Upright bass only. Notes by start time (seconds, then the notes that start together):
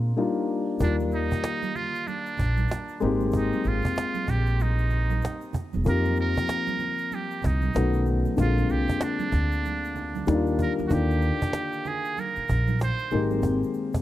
0.80 D#2
2.40 A#1
3.02 G#1
3.65 G#1
4.28 A#1
5.74 E1
5.86 F2
7.44 C2
7.75 B1
8.38 A#1
8.69 C2
9.32 D2
10.28 D#2
10.79 D2
10.91 D#2
12.37 muted upright bass stroke
12.49 A#1
13.12 G#1